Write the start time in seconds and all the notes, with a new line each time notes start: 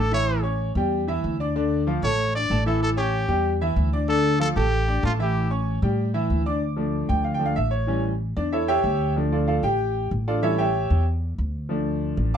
Already playing: A1
0.00 A4
0.12 E3 E4 C#5 E5
0.43 C#4 C#5 C#6
0.75 E2 G3 G4 G5
1.07 E3 E4 E5
1.24 D2
1.40 D4 D5 D6
1.56 D3 D4 D5
1.87 F3 F4 F5
2.02 A1 A3 A4 C#5 A5
2.35 D4 D5 D6
2.50 A1 A3 A4 A5
2.66 E3 E4 A4 E5
2.83 A4
2.96 C#4 G4 C#5 C#6
3.28 E2 G3 G4 G5
3.61 E3 E4 E5
3.76 D2
3.93 D4 D5 D6
4.08 D3 D4 A4 D5
4.39 F3 F4 A4 F5
4.56 A1 A3 G4 A4 A5
4.88 D4 D5 D6
5.03 A1 A3 F4 A4 A5
5.19 E3 E4 G4 E5
5.50 C#4 C#5 C#6
5.82 A2 G3 G4 G5
6.14 E3 E4 E5
6.30 D2
6.46 D4 D5 D6
6.76 F3 A3 D4
7.09 D2 G5
7.24 F5
7.34 G5
7.39 F3 A3 D4
7.46 F5
7.56 A1 E5
7.71 C#5
7.87 E3 G3 C#4
8.37 E2 D4 D5
8.53 E4 A4 C#5 E5
8.68 G4 C#5 E5 G5
8.84 D2
9.16 F3 A3 D4
9.32 D4 F4 A4 D5
9.48 F4 A4 D5 F5
9.63 A1 G4 G5
10.11 A1
10.28 D4 F4 A4 D5
10.42 E3 G3 C#4 E4 A4 C#5 E5
10.58 G4 C#5 E5 G5
10.90 E2
11.38 D2
11.69 F3 A3 D4
12.17 A1